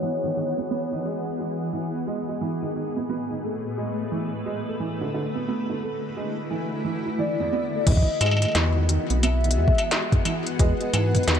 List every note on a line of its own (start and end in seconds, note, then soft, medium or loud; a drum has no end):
0.00 2.41 E3 medium
0.00 0.18 E3 medium
0.00 6.06 B3 medium
0.00 3.38 F#4 medium
0.00 6.06 G#4 medium
0.00 2.03 C#5 loud
0.00 3.38 F#5 medium
0.24 0.29 D#3 medium
0.37 0.46 D#3 medium
0.58 0.67 B3 medium
0.71 0.91 B3 loud
0.92 0.98 D#3 medium
1.05 1.25 G#3 medium
1.39 1.55 G#3 medium
1.73 1.89 E3 medium
2.07 2.17 G#3 loud
2.28 2.34 G#3 medium
2.41 4.80 A2 medium
2.41 2.57 E3 medium
2.56 7.87 A3 medium
2.62 2.68 D#3 medium
2.62 9.37 B4 medium
2.75 2.85 D#3 medium
2.96 3.06 B3 medium
3.09 3.30 B3 medium
3.30 3.36 D#3 medium
3.43 3.64 A3 medium
3.78 3.93 G#3 medium
4.12 4.27 E3 medium
4.46 4.55 G#3 medium
4.67 4.73 A3 medium
4.80 7.87 D3 medium
4.80 4.96 E3 medium
5.01 5.07 D3 medium
5.14 5.23 D3 medium
5.35 5.45 B3 medium
5.47 5.68 B3 medium
5.47 9.56 E4 loud
5.69 5.75 D3 medium
5.77 11.40 F#4 medium
5.82 6.02 A3 medium
6.16 6.32 G#3 medium
6.51 6.66 E3 medium
6.85 6.94 E3 medium
7.06 7.18 E4 medium
7.18 7.34 E3 medium
7.18 7.88 D5 loud
7.40 7.49 E2 medium
7.53 7.62 B3 loud
7.74 7.80 A3 medium
7.87 8.00 E2 loud
7.87 8.02 E3 medium
7.87 11.40 E3 medium
7.87 8.89 D#5 loud
7.87 kick loud
7.87 closed hi-hat medium
7.87 crash loud
7.92 kick medium
7.97 kick medium
8.03 11.40 B3 medium
8.03 kick medium
8.21 8.46 G#2 loud
8.21 8.30 G#3 loud
8.21 11.40 F#5 medium
8.21 closed hi-hat medium
8.21 struck metal medium
8.26 struck metal medium
8.31 struck metal medium
8.37 struck metal soft
8.42 8.48 G#3 medium
8.42 closed hi-hat medium
8.42 struck metal soft
8.45 struck metal soft
8.48 struck metal soft
8.52 8.98 E2 loud
8.52 8.71 E3 medium
8.52 snare loud
8.52 closed hi-hat medium
8.52 struck metal soft
8.58 11.40 G#4 medium
8.76 8.82 D#3 medium
8.89 8.98 D#3 medium
8.89 closed hi-hat medium
9.10 9.59 B1 medium
9.10 9.20 B3 medium
9.10 closed hi-hat medium
9.23 9.43 B3 loud
9.23 10.21 E5 loud
9.23 closed hi-hat medium
9.23 struck metal medium
9.44 9.50 D#3 medium
9.44 closed hi-hat soft
9.51 closed hi-hat medium
9.57 9.71 E2 medium
9.57 9.77 G#3 medium
9.68 kick loud
9.78 closed hi-hat medium
9.78 struck metal medium
9.91 10.07 G#3 medium
9.91 snare loud
9.91 closed hi-hat medium
10.12 kick loud
10.12 closed hi-hat soft
10.12 mid tom medium
10.25 10.41 E3 medium
10.25 closed hi-hat medium
10.25 struck metal medium
10.47 closed hi-hat medium
10.59 10.73 E2 loud
10.59 10.69 G#3 loud
10.59 11.40 B4 medium
10.59 kick loud
10.59 closed hi-hat medium
10.81 10.86 G#3 medium
10.81 closed hi-hat soft
10.93 11.19 G#2 medium
10.93 11.09 E3 medium
10.93 closed hi-hat medium
10.93 struck metal medium
11.15 11.20 D#3 medium
11.15 closed hi-hat medium
11.15 mid tom medium
11.16 closed hi-hat soft
11.23 closed hi-hat soft
11.28 11.40 E2 loud
11.28 11.37 D#3 medium
11.28 snare loud
11.28 closed hi-hat medium
11.35 closed hi-hat soft